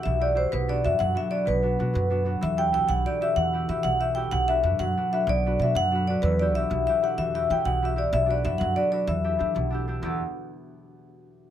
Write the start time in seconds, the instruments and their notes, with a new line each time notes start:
Already playing: harp B3 D4 E4 F#4 G4
0.03 upright bass B1, harp B2, vibraphone E5
0.20 harp E4 F#4 G4, vibraphone D5
0.35 harp E4 F#4 G4, vibraphone C5
0.52 upright bass B1, harp B2, vibraphone B4
0.68 harp B3 D4 F#4, vibraphone D5
0.84 upright bass F#2, harp B3 D4 F#4, vibraphone E5
0.99 upright bass F#2, harp F#3, vibraphone F#5
1.15 harp B3 D4 F#4, vibraphone E5
1.30 harp B3 D4 F#4, vibraphone D5
1.45 upright bass B1, harp B2, vibraphone B4
1.62 harp B3 D4 F#4
1.79 upright bass B2, harp B3 D4 F#4
1.93 upright bass F#2, harp F#3
2.10 harp B3 D4 F#4
2.25 harp B3 D4 F#4
2.41 upright bass E2, harp E3, vibraphone E5
2.57 harp E4 F#4 G4, vibraphone G5
2.72 upright bass B1, harp E4 F#4 G4, vibraphone G5
2.87 upright bass B1, harp B2, vibraphone F#5
3.06 harp E4 F#4 G4, vibraphone D5
3.21 harp E4 F#4 G4, vibraphone E5
3.36 upright bass E2, harp E3, vibraphone F#5
3.53 harp E4 F#4 G4
3.69 upright bass E3, harp E4 F#4 G4, vibraphone E5
3.83 upright bass B1, harp B2, vibraphone F#5
4.00 harp E4 F#4 G4, vibraphone E5
4.15 harp E4 F#4 G4, vibraphone G5
4.31 upright bass B1, harp B2, vibraphone F#5
4.48 harp D4 F#4 B4, vibraphone E5
4.63 upright bass F#2, harp D4 F#4 B4
4.79 upright bass F#2, harp F#3, vibraphone F#5
4.97 harp D4 F#4 B4
5.12 harp D4 F#4 B4, vibraphone E5
5.27 upright bass B1, harp B2, vibraphone D5
5.46 harp D4 F#4 B4
5.59 upright bass B2, harp D4 F#4 B4, vibraphone E5
5.75 upright bass F#2, harp F#3, vibraphone F#5
5.91 harp D4 F#4 B4
6.07 harp D4 F#4 B4, vibraphone D5
6.22 upright bass E2, harp E3, vibraphone B4
6.39 harp E4 F#4 G4, vibraphone D5
6.55 upright bass B1, harp E4 F#4 G4, vibraphone E5
6.70 upright bass B1, harp B2
6.87 harp E4 F#4 G4, vibraphone E5
7.02 harp E4 F#4 G4, vibraphone F#5
7.17 upright bass E2, harp E3, vibraphone E5
7.34 harp E4 F#4 G4, vibraphone E5
7.50 upright bass E3, harp E4 F#4 G4, vibraphone G5
7.65 upright bass B1, harp B2, vibraphone F#5
7.82 harp E4 F#4 G4, vibraphone E5
7.96 harp E4 F#4 G4, vibraphone D5
8.13 upright bass B1, harp B2, vibraphone E5
8.26 harp D4 F#4
8.30 harp B4, vibraphone D5
8.44 upright bass F#2, harp D4 F#4 B4, vibraphone E5
8.58 upright bass F#2, harp F#3, vibraphone F#5
8.76 harp D4 F#4 B4, vibraphone D5
8.92 harp D4 F#4 B4, vibraphone D5
9.07 upright bass E2, harp E3, vibraphone E5
9.24 harp D4 E4 G4
9.39 upright bass E3, harp D4 E4 G4
9.55 upright bass B1, harp B2
9.70 harp D4 E4 G4
9.88 harp D4 E4 G4
10.02 upright bass E2, harp E2 B2 B3 E4 G4 D5